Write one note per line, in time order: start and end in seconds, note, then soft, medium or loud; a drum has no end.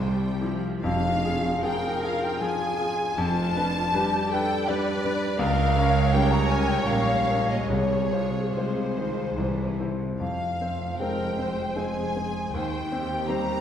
0.00 0.59 C2 soft
0.00 0.80 C2 medium
0.00 0.59 C3 soft
0.00 0.43 G3 medium
0.00 0.44 C5 medium
0.00 0.63 G5 soft
0.41 0.84 F3 soft
0.41 0.79 E4 soft
0.41 0.79 G4 soft
0.82 1.51 F1 medium
0.82 1.23 F2 medium
0.82 1.51 F2 medium
0.82 1.59 F5 medium
0.82 1.66 F5 medium
0.82 1.60 F5 medium
0.82 tam-tam medium
1.24 1.60 F4 soft
1.24 1.61 G#4 medium
1.62 1.99 F3 soft
1.62 1.99 F4 soft
1.62 1.99 G#4 medium
1.62 2.38 A#4 medium
1.62 2.02 G5 medium
1.62 2.07 G5 medium
1.62 2.04 G5 medium
2.03 2.38 F4 soft
2.03 2.38 G#4 medium
2.03 2.22 F5 medium
2.03 2.25 F5 medium
2.22 2.41 G5 medium
2.22 2.43 G5 medium
2.40 2.75 F3 medium
2.40 2.75 F4 soft
2.40 2.76 G#4 medium
2.40 3.17 G#4 medium
2.40 3.16 G#5 medium
2.40 3.20 G#5 medium
2.40 3.17 G#5 medium
2.79 3.12 F4 soft
2.79 3.13 G#4 medium
3.16 3.80 F1 medium
3.16 3.80 F2 medium
3.16 3.54 F2 medium
3.16 3.91 F4 medium
3.16 4.31 A5 medium
3.16 4.31 A5 loud
3.55 3.89 D4 soft
3.55 3.90 B4 medium
3.92 4.27 G3 medium
3.92 4.27 D4 medium
3.92 4.29 G4 medium
3.92 4.28 B4 medium
4.31 4.65 D4 medium
4.31 4.67 A4 medium
4.31 4.65 B4 medium
4.31 4.67 G5 medium
4.31 4.70 G5 loud
4.67 5.00 G3 medium
4.67 5.00 D4 medium
4.67 5.39 B4 medium
4.67 5.00 B4 medium
4.67 5.39 D5 medium
4.67 5.40 D5 medium
5.04 5.36 D4 medium
5.04 5.36 B4 medium
5.38 6.84 C#2 medium
5.38 5.74 C#2 medium
5.38 6.85 C#3 medium
5.38 5.75 A#4 medium
5.38 6.15 F5 medium
5.38 6.13 F5 medium
5.38 6.12 F5 medium
5.76 6.09 C#4 medium
5.76 6.09 A#4 medium
5.76 7.70 C#5 medium
6.13 6.47 G3 medium
6.13 6.47 C#4 medium
6.13 6.47 A#4 medium
6.13 6.31 G5 medium
6.13 6.32 G5 loud
6.13 6.31 G5 medium
6.31 6.48 A#5 medium
6.31 6.51 A#5 medium
6.47 6.69 G#5 medium
6.51 6.85 C#4 medium
6.51 6.86 A#4 medium
6.51 6.70 G#5 medium
6.68 6.88 G5 medium
6.68 6.89 G5 medium
6.73 6.90 G5 medium
6.87 7.70 A#1 medium
6.87 7.70 A#2 medium
6.87 7.25 G3 medium
6.87 7.25 C#4 medium
6.87 7.25 A#4 medium
6.87 7.52 F5 medium
6.87 7.49 F5 medium
6.91 7.51 F5 medium
7.30 7.67 C#4 soft
7.30 7.67 A#4 soft
7.49 7.70 D#5 medium
7.49 7.72 D#5 medium
7.69 8.11 C2 medium
7.69 9.35 C2 medium
7.69 8.45 C3 medium
7.69 9.76 G#4 medium
7.69 8.54 C#5 medium
7.69 8.24 C#5 medium
7.69 8.54 C#5 medium
8.12 8.51 F4 soft
8.12 8.51 C5 soft
8.55 8.95 C3 medium
8.55 8.94 G#3 soft
8.55 8.94 F4 soft
8.55 9.76 C5 medium
8.55 9.80 C5 soft
8.55 9.80 C5 medium
8.55 8.95 C5 soft
8.98 9.39 D#3 medium
8.98 9.35 F4 soft
8.98 9.35 C5 soft
9.38 9.78 C2 medium
9.38 9.99 C2 soft
9.38 9.79 E3 soft
9.80 10.21 C3 soft
9.80 10.17 E4 soft
9.80 10.17 C5 soft
10.20 12.50 F1 medium
10.20 10.59 F2 soft
10.20 12.51 F2 soft
10.20 10.95 F5 medium
10.20 10.96 F5 medium
10.61 10.96 C4 soft
10.61 10.96 C5 soft
10.98 11.35 G#3 soft
10.98 11.36 C4 soft
10.98 11.36 A#4 medium
10.98 11.36 C5 soft
10.98 11.77 G5 medium
10.98 11.78 G5 medium
11.38 11.74 C4 soft
11.38 11.73 C5 soft
11.38 11.78 C5 soft
11.76 12.12 G#3 soft
11.76 12.12 C4 soft
11.76 12.55 G#4 medium
11.76 12.12 C5 soft
11.76 12.54 G#5 medium
11.76 12.55 G#5 medium
12.16 12.51 C4 soft
12.16 12.51 C5 soft
12.54 12.91 D#2 medium
12.54 13.61 D#2 medium
12.54 13.61 D#3 soft
12.54 12.92 C5 soft
12.54 13.27 G5 medium
12.54 13.29 G5 medium
12.92 13.26 C4 soft
12.92 13.61 G4 medium
12.92 13.25 C5 soft
13.28 13.61 G3 soft
13.28 13.61 C4 soft
13.28 13.61 C5 soft
13.28 13.61 A#5 medium